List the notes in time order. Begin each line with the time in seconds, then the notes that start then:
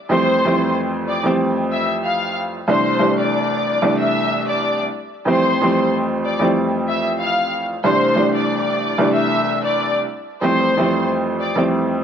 0.09 F2 E3 G3 A3 C4 C5 C6
0.45 F2 E3 G3 A3 C4
1.08 D5 D6
1.23 F2 E3 G3 A3 C4
1.72 E5 E6
2.05 F5 F6
2.68 C2 E3 G3 A3 D4 C5 C6
2.99 C2 E3 G3 A3 D4
3.19 D5 D6
3.82 C2 E3 G3 A3 D4
3.99 E5 E6
4.48 D5 D6
5.25 F2 E3 G3 A3 C4 C5 C6
5.61 F2 E3 G3 A3 C4
6.25 D5 D6
6.39 F2 E3 G3 A3 C4
6.88 E5 E6
7.21 F5 F6
7.84 C2 E3 G3 A3 D4 C5 C6
8.16 C2 E3 G3 A3 D4
8.36 D5 D6
8.98 C2 E3 G3 A3 D4
9.14 E5 E6
9.65 D5 D6
10.41 F2 E3 G3 A3 C4 C5 C6
10.77 F2 E3 G3 A3 C4
11.40 D5 D6
11.55 F2 E3 G3 A3 C4